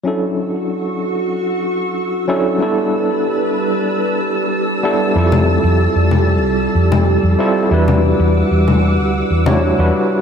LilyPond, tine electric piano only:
\new Staff \with { instrumentName = "Tine electric piano" } { \time 4/4 \key d \major \tempo 4 = 94 <fis cis' d' e' a'>2.~ <fis cis' d' e' a'>8 <fis cis' d' e' a'>8 | <g b d' e' a'>2.~ <g b d' e' a'>8 <g b d' e' a'>8 | <g c' e' f' a'>2.~ <g c' e' f' a'>8 <g c' e' f' a'>8 | <g d' e' fis' b'>2~ <g d' e' fis' b'>8. <g d' e' fis' cis''>16 r16 <g d' e' fis' b'>8. | }